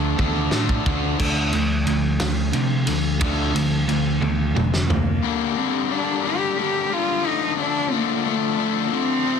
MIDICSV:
0, 0, Header, 1, 7, 480
1, 0, Start_track
1, 0, Tempo, 671892
1, 852, Time_signature, 6, 3, 24, 8
1, 6714, End_track
2, 0, Start_track
2, 0, Title_t, "String machine"
2, 0, Program_c, 0, 50
2, 860, Note_on_c, 0, 69, 70
2, 861, Note_on_c, 0, 77, 91
2, 865, Note_on_c, 0, 62, 78
2, 3705, Note_off_c, 0, 69, 0
2, 3706, Note_off_c, 0, 77, 0
2, 3708, Note_off_c, 0, 62, 0
2, 3737, Note_on_c, 0, 82, 89
2, 3740, Note_on_c, 0, 67, 80
2, 3740, Note_on_c, 0, 74, 73
2, 5158, Note_off_c, 0, 82, 0
2, 5160, Note_off_c, 0, 67, 0
2, 5160, Note_off_c, 0, 74, 0
2, 5181, Note_on_c, 0, 81, 83
2, 5186, Note_on_c, 0, 74, 74
2, 5188, Note_on_c, 0, 65, 74
2, 6604, Note_off_c, 0, 74, 0
2, 6605, Note_off_c, 0, 65, 0
2, 6621, Note_on_c, 0, 77, 72
2, 6622, Note_on_c, 0, 67, 86
2, 6714, Note_off_c, 0, 67, 0
2, 6714, Note_off_c, 0, 77, 0
2, 6714, Note_off_c, 0, 81, 0
2, 6714, End_track
3, 0, Start_track
3, 0, Title_t, "Cello"
3, 0, Program_c, 1, 42
3, 0, Note_on_c, 1, 69, 125
3, 351, Note_off_c, 1, 69, 0
3, 3516, Note_on_c, 1, 58, 93
3, 3982, Note_on_c, 1, 60, 93
3, 3993, Note_off_c, 1, 58, 0
3, 4222, Note_on_c, 1, 62, 100
3, 4232, Note_off_c, 1, 60, 0
3, 4456, Note_off_c, 1, 62, 0
3, 4466, Note_on_c, 1, 67, 105
3, 4681, Note_off_c, 1, 67, 0
3, 4725, Note_on_c, 1, 67, 92
3, 4947, Note_on_c, 1, 65, 101
3, 4958, Note_off_c, 1, 67, 0
3, 5186, Note_on_c, 1, 63, 99
3, 5197, Note_off_c, 1, 65, 0
3, 5418, Note_off_c, 1, 63, 0
3, 5425, Note_on_c, 1, 62, 106
3, 5661, Note_on_c, 1, 58, 92
3, 5671, Note_off_c, 1, 62, 0
3, 5904, Note_on_c, 1, 57, 99
3, 5914, Note_off_c, 1, 58, 0
3, 6325, Note_on_c, 1, 58, 69
3, 6336, Note_off_c, 1, 57, 0
3, 6373, Note_on_c, 1, 60, 123
3, 6384, Note_off_c, 1, 58, 0
3, 6714, Note_off_c, 1, 60, 0
3, 6714, End_track
4, 0, Start_track
4, 0, Title_t, "Overdriven electric guitar"
4, 0, Program_c, 2, 29
4, 850, Note_on_c, 2, 62, 101
4, 1076, Note_off_c, 2, 62, 0
4, 1086, Note_on_c, 2, 57, 69
4, 1305, Note_off_c, 2, 57, 0
4, 1330, Note_on_c, 2, 57, 87
4, 1547, Note_off_c, 2, 57, 0
4, 1573, Note_on_c, 2, 57, 81
4, 1788, Note_off_c, 2, 57, 0
4, 1801, Note_on_c, 2, 57, 88
4, 2022, Note_off_c, 2, 57, 0
4, 2046, Note_on_c, 2, 57, 84
4, 2264, Note_off_c, 2, 57, 0
4, 2294, Note_on_c, 2, 62, 98
4, 2518, Note_off_c, 2, 62, 0
4, 2527, Note_on_c, 2, 57, 84
4, 2745, Note_off_c, 2, 57, 0
4, 2773, Note_on_c, 2, 57, 77
4, 2988, Note_off_c, 2, 57, 0
4, 3006, Note_on_c, 2, 57, 81
4, 3224, Note_off_c, 2, 57, 0
4, 3251, Note_on_c, 2, 57, 92
4, 3466, Note_off_c, 2, 57, 0
4, 3487, Note_on_c, 2, 57, 84
4, 3704, Note_off_c, 2, 57, 0
4, 6714, End_track
5, 0, Start_track
5, 0, Title_t, "Overdriven electric guitar"
5, 0, Program_c, 3, 29
5, 0, Note_on_c, 3, 50, 77
5, 0, Note_on_c, 3, 53, 73
5, 0, Note_on_c, 3, 57, 84
5, 0, Note_on_c, 3, 62, 91
5, 120, Note_off_c, 3, 50, 0
5, 127, Note_off_c, 3, 53, 0
5, 129, Note_on_c, 3, 50, 86
5, 131, Note_off_c, 3, 57, 0
5, 134, Note_off_c, 3, 62, 0
5, 136, Note_on_c, 3, 53, 82
5, 140, Note_on_c, 3, 57, 107
5, 142, Note_on_c, 3, 62, 102
5, 369, Note_off_c, 3, 50, 0
5, 373, Note_off_c, 3, 57, 0
5, 374, Note_off_c, 3, 53, 0
5, 378, Note_on_c, 3, 50, 76
5, 382, Note_on_c, 3, 57, 96
5, 383, Note_off_c, 3, 62, 0
5, 383, Note_on_c, 3, 53, 99
5, 392, Note_on_c, 3, 62, 89
5, 609, Note_off_c, 3, 50, 0
5, 615, Note_off_c, 3, 53, 0
5, 618, Note_off_c, 3, 57, 0
5, 618, Note_on_c, 3, 50, 85
5, 623, Note_on_c, 3, 53, 84
5, 625, Note_off_c, 3, 62, 0
5, 627, Note_on_c, 3, 57, 82
5, 633, Note_on_c, 3, 62, 92
5, 840, Note_off_c, 3, 50, 0
5, 843, Note_off_c, 3, 53, 0
5, 845, Note_off_c, 3, 57, 0
5, 848, Note_off_c, 3, 62, 0
5, 855, Note_on_c, 3, 50, 90
5, 861, Note_on_c, 3, 53, 102
5, 863, Note_on_c, 3, 57, 96
5, 1079, Note_off_c, 3, 50, 0
5, 1082, Note_off_c, 3, 53, 0
5, 1083, Note_off_c, 3, 57, 0
5, 1097, Note_on_c, 3, 50, 71
5, 1103, Note_on_c, 3, 53, 73
5, 1310, Note_off_c, 3, 50, 0
5, 1313, Note_off_c, 3, 53, 0
5, 1340, Note_on_c, 3, 50, 75
5, 1341, Note_on_c, 3, 53, 79
5, 1551, Note_off_c, 3, 50, 0
5, 1552, Note_off_c, 3, 53, 0
5, 1578, Note_on_c, 3, 50, 70
5, 1584, Note_on_c, 3, 53, 78
5, 1791, Note_off_c, 3, 50, 0
5, 1794, Note_off_c, 3, 53, 0
5, 1822, Note_on_c, 3, 50, 79
5, 1822, Note_on_c, 3, 53, 92
5, 2033, Note_off_c, 3, 50, 0
5, 2033, Note_off_c, 3, 53, 0
5, 2061, Note_on_c, 3, 50, 67
5, 2063, Note_on_c, 3, 53, 87
5, 2272, Note_off_c, 3, 50, 0
5, 2273, Note_off_c, 3, 53, 0
5, 2295, Note_on_c, 3, 50, 91
5, 2301, Note_on_c, 3, 53, 100
5, 2305, Note_on_c, 3, 57, 110
5, 2518, Note_off_c, 3, 50, 0
5, 2521, Note_off_c, 3, 53, 0
5, 2523, Note_off_c, 3, 57, 0
5, 2537, Note_on_c, 3, 50, 69
5, 2540, Note_on_c, 3, 53, 79
5, 2749, Note_off_c, 3, 50, 0
5, 2751, Note_off_c, 3, 53, 0
5, 2777, Note_on_c, 3, 50, 88
5, 2778, Note_on_c, 3, 53, 76
5, 2989, Note_off_c, 3, 50, 0
5, 2990, Note_off_c, 3, 53, 0
5, 3014, Note_on_c, 3, 50, 74
5, 3019, Note_on_c, 3, 53, 77
5, 3228, Note_off_c, 3, 50, 0
5, 3230, Note_off_c, 3, 53, 0
5, 3254, Note_on_c, 3, 50, 70
5, 3261, Note_on_c, 3, 53, 85
5, 3468, Note_off_c, 3, 50, 0
5, 3471, Note_off_c, 3, 53, 0
5, 3498, Note_on_c, 3, 50, 68
5, 3502, Note_on_c, 3, 53, 73
5, 3710, Note_off_c, 3, 50, 0
5, 3712, Note_off_c, 3, 53, 0
5, 3733, Note_on_c, 3, 43, 98
5, 3741, Note_on_c, 3, 50, 101
5, 3743, Note_on_c, 3, 55, 107
5, 3747, Note_on_c, 3, 58, 108
5, 3752, Note_on_c, 3, 62, 112
5, 3971, Note_off_c, 3, 43, 0
5, 3975, Note_off_c, 3, 50, 0
5, 3977, Note_off_c, 3, 55, 0
5, 3980, Note_on_c, 3, 43, 83
5, 3982, Note_off_c, 3, 58, 0
5, 3984, Note_on_c, 3, 50, 88
5, 3986, Note_on_c, 3, 55, 92
5, 3990, Note_off_c, 3, 62, 0
5, 3991, Note_on_c, 3, 58, 89
5, 3993, Note_on_c, 3, 62, 98
5, 4204, Note_off_c, 3, 43, 0
5, 4212, Note_off_c, 3, 50, 0
5, 4213, Note_on_c, 3, 43, 86
5, 4216, Note_off_c, 3, 55, 0
5, 4217, Note_off_c, 3, 58, 0
5, 4220, Note_on_c, 3, 50, 88
5, 4224, Note_on_c, 3, 55, 85
5, 4225, Note_on_c, 3, 58, 91
5, 4228, Note_off_c, 3, 62, 0
5, 4231, Note_on_c, 3, 62, 95
5, 4440, Note_off_c, 3, 43, 0
5, 4444, Note_off_c, 3, 50, 0
5, 4444, Note_off_c, 3, 55, 0
5, 4449, Note_on_c, 3, 43, 79
5, 4451, Note_off_c, 3, 58, 0
5, 4453, Note_on_c, 3, 50, 82
5, 4453, Note_on_c, 3, 55, 90
5, 4457, Note_off_c, 3, 62, 0
5, 4459, Note_on_c, 3, 58, 92
5, 4466, Note_on_c, 3, 62, 99
5, 4680, Note_off_c, 3, 43, 0
5, 4680, Note_off_c, 3, 50, 0
5, 4686, Note_off_c, 3, 55, 0
5, 4687, Note_off_c, 3, 58, 0
5, 4688, Note_on_c, 3, 43, 88
5, 4689, Note_on_c, 3, 50, 89
5, 4691, Note_off_c, 3, 62, 0
5, 4694, Note_on_c, 3, 55, 100
5, 4696, Note_on_c, 3, 58, 91
5, 4699, Note_on_c, 3, 62, 97
5, 4915, Note_off_c, 3, 43, 0
5, 4917, Note_off_c, 3, 50, 0
5, 4922, Note_off_c, 3, 55, 0
5, 4924, Note_off_c, 3, 58, 0
5, 4924, Note_on_c, 3, 43, 73
5, 4926, Note_on_c, 3, 50, 89
5, 4927, Note_off_c, 3, 62, 0
5, 4930, Note_on_c, 3, 55, 91
5, 4932, Note_on_c, 3, 58, 91
5, 4935, Note_on_c, 3, 62, 91
5, 5152, Note_off_c, 3, 43, 0
5, 5153, Note_off_c, 3, 50, 0
5, 5155, Note_off_c, 3, 55, 0
5, 5156, Note_off_c, 3, 58, 0
5, 5158, Note_off_c, 3, 62, 0
5, 5163, Note_on_c, 3, 50, 98
5, 5165, Note_on_c, 3, 53, 119
5, 5171, Note_on_c, 3, 57, 105
5, 5172, Note_on_c, 3, 62, 108
5, 5398, Note_off_c, 3, 50, 0
5, 5406, Note_on_c, 3, 50, 87
5, 5410, Note_off_c, 3, 53, 0
5, 5412, Note_off_c, 3, 57, 0
5, 5412, Note_off_c, 3, 62, 0
5, 5413, Note_on_c, 3, 53, 74
5, 5415, Note_on_c, 3, 57, 81
5, 5420, Note_on_c, 3, 62, 86
5, 5642, Note_off_c, 3, 50, 0
5, 5650, Note_on_c, 3, 50, 83
5, 5651, Note_off_c, 3, 53, 0
5, 5654, Note_off_c, 3, 62, 0
5, 5654, Note_on_c, 3, 53, 97
5, 5658, Note_off_c, 3, 57, 0
5, 5661, Note_on_c, 3, 57, 84
5, 5662, Note_on_c, 3, 62, 92
5, 5882, Note_off_c, 3, 50, 0
5, 5888, Note_off_c, 3, 53, 0
5, 5890, Note_on_c, 3, 50, 85
5, 5891, Note_off_c, 3, 57, 0
5, 5897, Note_off_c, 3, 62, 0
5, 5897, Note_on_c, 3, 53, 85
5, 5900, Note_on_c, 3, 57, 98
5, 5906, Note_on_c, 3, 62, 92
5, 6119, Note_off_c, 3, 50, 0
5, 6122, Note_off_c, 3, 53, 0
5, 6128, Note_on_c, 3, 50, 99
5, 6131, Note_off_c, 3, 57, 0
5, 6131, Note_on_c, 3, 53, 90
5, 6134, Note_off_c, 3, 62, 0
5, 6139, Note_on_c, 3, 57, 95
5, 6143, Note_on_c, 3, 62, 103
5, 6361, Note_off_c, 3, 50, 0
5, 6370, Note_off_c, 3, 53, 0
5, 6370, Note_on_c, 3, 50, 90
5, 6374, Note_off_c, 3, 57, 0
5, 6376, Note_off_c, 3, 62, 0
5, 6378, Note_on_c, 3, 53, 78
5, 6383, Note_on_c, 3, 57, 102
5, 6385, Note_on_c, 3, 62, 91
5, 6596, Note_off_c, 3, 50, 0
5, 6600, Note_off_c, 3, 53, 0
5, 6602, Note_off_c, 3, 57, 0
5, 6603, Note_off_c, 3, 62, 0
5, 6608, Note_on_c, 3, 41, 95
5, 6612, Note_on_c, 3, 48, 110
5, 6617, Note_on_c, 3, 53, 105
5, 6621, Note_on_c, 3, 57, 108
5, 6623, Note_on_c, 3, 60, 120
5, 6714, Note_off_c, 3, 41, 0
5, 6714, Note_off_c, 3, 48, 0
5, 6714, Note_off_c, 3, 53, 0
5, 6714, Note_off_c, 3, 57, 0
5, 6714, Note_off_c, 3, 60, 0
5, 6714, End_track
6, 0, Start_track
6, 0, Title_t, "Picked electric bass"
6, 0, Program_c, 4, 34
6, 0, Note_on_c, 4, 38, 88
6, 88, Note_off_c, 4, 38, 0
6, 132, Note_on_c, 4, 38, 87
6, 328, Note_off_c, 4, 38, 0
6, 362, Note_on_c, 4, 45, 77
6, 562, Note_off_c, 4, 45, 0
6, 616, Note_on_c, 4, 38, 92
6, 810, Note_off_c, 4, 38, 0
6, 853, Note_on_c, 4, 38, 82
6, 1078, Note_off_c, 4, 38, 0
6, 1094, Note_on_c, 4, 38, 97
6, 1319, Note_off_c, 4, 38, 0
6, 1335, Note_on_c, 4, 38, 90
6, 1784, Note_off_c, 4, 38, 0
6, 1813, Note_on_c, 4, 48, 94
6, 2038, Note_off_c, 4, 48, 0
6, 2050, Note_on_c, 4, 38, 96
6, 2276, Note_off_c, 4, 38, 0
6, 2293, Note_on_c, 4, 38, 92
6, 2517, Note_off_c, 4, 38, 0
6, 2529, Note_on_c, 4, 38, 95
6, 2756, Note_off_c, 4, 38, 0
6, 2765, Note_on_c, 4, 38, 92
6, 2993, Note_off_c, 4, 38, 0
6, 3006, Note_on_c, 4, 38, 95
6, 3233, Note_off_c, 4, 38, 0
6, 3248, Note_on_c, 4, 29, 87
6, 3700, Note_off_c, 4, 29, 0
6, 6714, End_track
7, 0, Start_track
7, 0, Title_t, "Drums"
7, 134, Note_on_c, 9, 48, 59
7, 135, Note_on_c, 9, 36, 75
7, 205, Note_off_c, 9, 48, 0
7, 207, Note_off_c, 9, 36, 0
7, 366, Note_on_c, 9, 38, 78
7, 438, Note_off_c, 9, 38, 0
7, 495, Note_on_c, 9, 36, 78
7, 566, Note_off_c, 9, 36, 0
7, 616, Note_on_c, 9, 36, 93
7, 687, Note_off_c, 9, 36, 0
7, 854, Note_on_c, 9, 49, 113
7, 855, Note_on_c, 9, 36, 105
7, 926, Note_off_c, 9, 49, 0
7, 927, Note_off_c, 9, 36, 0
7, 1090, Note_on_c, 9, 51, 61
7, 1162, Note_off_c, 9, 51, 0
7, 1334, Note_on_c, 9, 51, 75
7, 1405, Note_off_c, 9, 51, 0
7, 1570, Note_on_c, 9, 51, 90
7, 1571, Note_on_c, 9, 38, 111
7, 1641, Note_off_c, 9, 51, 0
7, 1642, Note_off_c, 9, 38, 0
7, 1808, Note_on_c, 9, 51, 77
7, 1880, Note_off_c, 9, 51, 0
7, 2049, Note_on_c, 9, 51, 81
7, 2120, Note_off_c, 9, 51, 0
7, 2291, Note_on_c, 9, 51, 103
7, 2295, Note_on_c, 9, 36, 106
7, 2362, Note_off_c, 9, 51, 0
7, 2366, Note_off_c, 9, 36, 0
7, 2541, Note_on_c, 9, 51, 65
7, 2612, Note_off_c, 9, 51, 0
7, 2777, Note_on_c, 9, 51, 67
7, 2848, Note_off_c, 9, 51, 0
7, 3017, Note_on_c, 9, 48, 58
7, 3089, Note_off_c, 9, 48, 0
7, 3261, Note_on_c, 9, 47, 79
7, 3333, Note_off_c, 9, 47, 0
7, 3384, Note_on_c, 9, 38, 74
7, 3456, Note_off_c, 9, 38, 0
7, 3502, Note_on_c, 9, 43, 99
7, 3574, Note_off_c, 9, 43, 0
7, 6714, End_track
0, 0, End_of_file